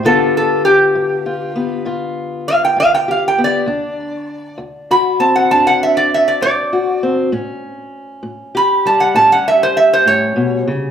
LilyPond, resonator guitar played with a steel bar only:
\new Staff \with { instrumentName = "Resonator guitar played with a steel bar" } { \time 12/8 \key g \major \tempo 4. = 66 a'8 a'8 g'2 r4 f''16 g''16 f''16 g''16 f''16 g''16 d''8~ | d''4. r8 b''8 a''16 fis''16 a''16 fis''16 e''16 d''16 e''16 d''16 d''4 r8 | r2 b''8 a''16 fis''16 a''16 fis''16 e''16 c''16 e''16 c''16 cis''4 r8 | }